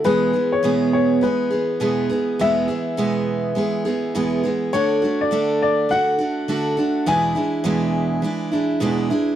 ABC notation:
X:1
M:4/4
L:1/16
Q:"Swing 16ths" 1/4=102
K:Emix
V:1 name="Upright piano"
B3 c3 c2 B8 | e12- e2 z2 | c3 d3 d2 f8 | g12- g2 z2 |]
V:2 name="Steel-string acoustic guitar" clef=bass
[E,,B,,E,G,B,G]2 [E,G,B,G]2 [E,,B,,E,G,B,G]4 [E,G,B,G]2 [E,G,B,G]2 [E,,B,,E,G,B,G]2 [E,G,B,G]2 | [E,,B,,E,G,B,G]2 [E,G,B,G]2 [E,,B,,E,G,B,G]4 [E,G,B,G]2 [E,G,B,G]2 [E,,B,,E,G,B,G]2 [E,G,B,G]2 | [D,A,DF]2 [A,DF]2 [D,A,DF]4 [D,A,DF]2 [A,DF]2 [D,A,DF]2 [A,DF]2 | [E,,B,,E,G,DE]2 [E,G,DE]2 [E,,B,,E,G,DE]4 [E,G,DE]2 [E,G,DE]2 [E,,B,,E,G,DE]2 [E,G,DE]2 |]